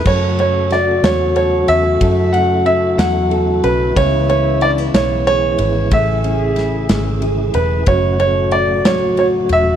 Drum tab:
CC |x-----|------|------|------|
RD |-xxxxx|xxxxxx|xxxxxx|xxxxxx|
SD |--oo--|---o--|---o--|--oo--|
BD |o-----|o-----|o-----|o-----|

CC |------|
RD |xxxxxx|
SD |---o--|
BD |o-----|